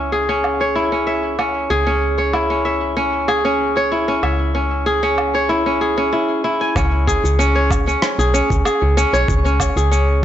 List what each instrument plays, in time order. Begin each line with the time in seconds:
Already playing: fm bass C#2, kora C#4 E4 C#5 E5
0.12 kora G#4
0.29 kora C#4
0.44 low woodblock
0.61 kora C#5
0.75 kora E4
0.92 kora C#4
1.07 kora E5
1.39 kora C#4, low woodblock
1.70 fm bass C#2, kora G#4
1.87 kora C#4
2.18 kora C#5
2.33 kora E4, low woodblock
2.50 kora C#4
2.65 kora E5
2.97 kora C#4
3.28 kora G#4, low woodblock
3.45 kora C#4
3.77 kora C#5
3.92 kora E4
4.08 kora C#4
4.23 fm bass C#2, kora E5, low woodblock
4.55 kora C#4
4.86 kora G#4
5.03 kora C#4
5.18 low woodblock
5.35 kora C#5
5.49 kora E4
5.66 kora C#4
5.81 kora G#4
5.98 kora C#4
6.13 kora E4
6.44 kora E4
6.61 kora G#5
6.76 fm bass C#2, kora C#4, kick, cabasa, low woodblock
7.07 kora G#4, kick, cabasa
7.24 fm bass C#2, cabasa
7.39 kora C#4, cabasa
7.55 kora C#5
7.71 kick, cabasa, low woodblock
7.87 kora C#4, cabasa
8.02 cross-stick, cabasa
8.19 fm bass B1, kora G#4, cabasa
8.34 kora C#4, cabasa
8.50 fm bass C#2, kick, cabasa
8.65 kora G#4, cabasa, low woodblock
8.82 fm bass C#2
8.97 kora C#4, cabasa
9.13 fm bass B1, kora C#5, cabasa
9.28 fm bass C#2, kick, cabasa
9.45 kora C#4, cabasa
9.60 kick, cabasa, low woodblock
9.76 fm bass C#2, kora G#4, cabasa
9.91 kora C#4, cabasa